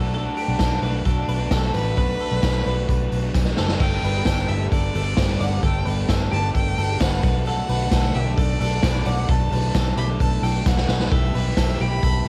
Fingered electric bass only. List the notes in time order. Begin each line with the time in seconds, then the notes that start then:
Already playing: B1
0.48 B1
0.59 B1
0.82 B1
1.05 B1
1.28 B1
1.51 B1
1.75 A1
1.97 B1
2.32 B1
2.43 B1
2.66 B1
2.89 B1
3.12 B1
3.34 B1
3.58 F#1
3.80 G1
4.03 G1
4.26 G1
4.49 G1
4.72 G1
4.95 G1
5.17 G1
5.41 G1
5.63 G1
5.86 G1
6.09 G1
6.32 G1
6.55 G1
6.78 G1
7.00 G1
7.24 B1
7.69 B1
7.92 B1
8.15 B1
8.38 B1
8.60 B1
8.83 B1
9.06 B1
9.29 B1
9.52 B1
9.75 B1
9.97 B1
10.20 B1
10.42 B1
10.66 B1
10.88 B1
11.12 B1
11.35 B1
11.57 B1
11.80 B1
12.03 B1